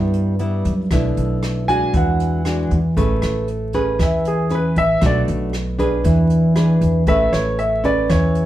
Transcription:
0.00 0.61 G2 medium
0.00 0.88 G2 medium
0.00 0.35 G3 soft
0.00 0.35 B3 medium
0.00 0.35 E4 medium
0.14 closed hi-hat soft
0.39 0.72 G3 medium
0.39 0.72 B3 soft
0.39 0.73 E4 medium
0.39 closed hi-hat soft
0.65 0.89 F#2 medium
0.65 kick soft
0.65 closed hi-hat soft
0.91 1.15 B1 medium
0.91 1.91 B2 medium
0.91 1.64 A3 medium
0.91 1.64 D4 soft
0.91 1.64 E4 medium
0.91 kick medium
0.91 cross-stick medium
0.91 closed hi-hat medium
1.17 1.90 B1 medium
1.17 closed hi-hat soft
1.43 cross-stick medium
1.43 closed hi-hat soft
1.68 2.41 G#3 medium
1.68 2.41 D4 medium
1.68 2.41 F#4 medium
1.68 1.93 G#5 medium
1.68 kick soft
1.68 closed hi-hat soft
1.94 2.67 E2 loud
1.94 2.94 E3 medium
1.94 2.68 F#5 medium
1.94 kick medium
1.94 closed hi-hat medium
2.20 closed hi-hat soft
2.45 2.78 G#3 medium
2.45 2.78 D4 medium
2.45 2.78 F#4 medium
2.45 cross-stick medium
2.45 closed hi-hat soft
2.71 2.94 E2 medium
2.71 kick soft
2.71 closed hi-hat soft
2.97 3.20 A1 medium
2.97 3.97 A3 medium
2.97 3.47 C#4 medium
2.97 3.48 G#4 medium
2.97 3.48 B4 medium
2.97 kick medium
2.97 closed hi-hat medium
3.22 3.95 A1 medium
3.22 cross-stick medium
3.22 closed hi-hat soft
3.48 closed hi-hat soft
3.73 4.47 C#4 medium
3.73 4.47 G#4 medium
3.73 4.47 B4 medium
3.73 kick soft
3.73 closed hi-hat soft
3.99 4.72 E2 medium
3.99 4.99 E3 medium
3.99 4.25 E5 medium
3.99 kick medium
3.99 cross-stick medium
3.99 closed hi-hat medium
4.25 4.51 G#4 medium
4.25 closed hi-hat soft
4.50 4.83 C#4 medium
4.50 4.83 G#4 medium
4.50 4.84 B4 medium
4.50 closed hi-hat soft
4.55 4.77 B4 medium
4.76 5.00 A1 medium
4.76 5.02 E5 loud
4.76 kick soft
4.76 closed hi-hat soft
5.01 5.26 B1 medium
5.01 6.02 B2 medium
5.01 5.53 A3 medium
5.01 5.53 D4 medium
5.01 5.53 F#4 medium
5.01 kick medium
5.01 cross-stick medium
5.01 closed hi-hat medium
5.06 5.20 D5 medium
5.28 6.01 B1 medium
5.28 closed hi-hat soft
5.53 cross-stick medium
5.53 closed hi-hat soft
5.79 6.51 D4 medium
5.79 6.52 G#4 medium
5.79 6.52 B4 medium
5.79 kick soft
5.79 closed hi-hat soft
6.04 6.77 E2 medium
6.04 7.05 E3 medium
6.04 kick medium
6.04 closed hi-hat medium
6.30 closed hi-hat soft
6.56 7.03 D4 medium
6.56 7.03 G#4 medium
6.56 7.03 B4 medium
6.56 cross-stick medium
6.56 closed hi-hat soft
6.81 7.05 E2 medium
6.81 kick soft
6.81 closed hi-hat soft
7.07 7.31 A1 medium
7.07 8.07 A3 medium
7.07 7.58 C#4 soft
7.07 7.58 G#4 soft
7.07 7.59 B4 medium
7.07 7.32 E5 medium
7.07 kick medium
7.07 closed hi-hat medium
7.33 8.06 A1 medium
7.33 7.59 C#5 medium
7.33 cross-stick medium
7.33 closed hi-hat soft
7.58 7.85 E5 medium
7.58 closed hi-hat soft
7.84 8.46 C#4 medium
7.84 8.46 G#4 medium
7.84 8.46 B4 medium
7.84 8.09 D5 medium
7.84 kick soft
7.84 closed hi-hat soft
8.09 8.46 E2 medium
8.09 8.46 E3 medium
8.09 8.46 C#5 medium
8.09 kick medium
8.09 cross-stick medium
8.09 closed hi-hat medium
8.35 closed hi-hat soft

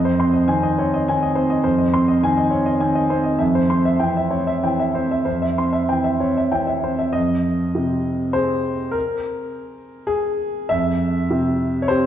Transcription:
0.00 0.18 F2 soft
0.00 0.14 D#5 soft
0.05 0.28 C5 soft
0.19 0.45 C4 soft
0.19 0.43 C6 soft
0.33 0.57 D#5 soft
0.47 0.73 D#3 soft
0.47 0.74 C4 soft
0.47 0.71 G#5 soft
0.63 0.86 D#5 soft
0.78 1.04 C4 soft
0.78 0.92 C#5 soft
0.94 1.15 D#5 soft
1.08 1.33 D#3 soft
1.08 1.33 C4 soft
1.08 1.30 G#5 soft
1.23 1.44 D#5 soft
1.35 1.61 C4 soft
1.35 1.58 C5 soft
1.50 1.73 D#5 soft
1.63 1.92 F2 medium
1.63 1.87 C5 soft
1.78 2.01 D#5 soft
1.94 2.19 C4 soft
1.94 2.16 C6 soft
2.08 2.31 D#5 soft
2.23 2.49 D#3 soft
2.23 2.49 C4 soft
2.23 2.46 G#5 medium
2.37 2.60 D#5 soft
2.50 2.77 C4 soft
2.50 2.65 C#5 soft
2.66 2.89 D#5 soft
2.80 3.07 D#3 soft
2.80 3.07 C4 soft
2.80 3.04 G#5 soft
2.95 3.19 D#5 soft
3.10 3.37 C4 soft
3.10 3.34 C5 soft
3.24 3.39 D#5 soft
3.39 3.69 F2 medium
3.39 3.63 E5 soft
3.55 3.79 C5 soft
3.70 3.97 C4 soft
3.70 3.94 C6 soft
3.85 4.10 E5 soft
3.99 4.28 E3 soft
3.99 4.28 C4 soft
3.99 4.25 G5 soft
4.17 4.41 E5 soft
4.30 4.59 C4 soft
4.30 4.47 C#5 soft
4.47 4.72 E5 soft
4.63 4.92 E3 soft
4.63 4.91 C4 soft
4.63 4.88 G5 soft
4.79 5.04 E5 soft
4.94 5.23 C4 soft
4.94 5.20 C5 soft
5.11 5.36 E5 soft
5.25 5.56 F2 soft
5.25 5.51 C5 soft
5.42 5.67 E5 soft
5.58 5.86 C4 soft
5.58 5.83 C6 soft
5.73 5.98 E5 soft
5.89 6.18 E3 soft
5.89 6.17 C4 soft
5.89 6.14 G5 soft
6.04 6.30 E5 soft
6.20 6.49 C4 soft
6.20 6.36 C#5 soft
6.37 6.62 E5 soft
6.52 6.81 E3 soft
6.52 6.81 C4 soft
6.52 6.78 G5 soft
6.67 6.93 E5 soft
6.84 7.12 C4 soft
6.84 7.09 C5 soft
6.99 7.15 E5 soft
7.13 8.90 F2 soft
7.13 8.34 D#5 medium
7.75 8.70 C3 soft
8.33 10.68 C4 soft
8.33 10.05 G#4 soft
8.33 8.94 C5 medium
8.91 10.09 A#4 medium
10.07 10.71 G#4 medium
10.69 12.06 F2 soft
10.69 11.82 E5 medium
11.30 12.06 C3 soft
11.82 11.90 C#5 soft
11.88 12.06 C4 soft
11.88 12.06 G4 soft
11.88 12.06 C5 medium

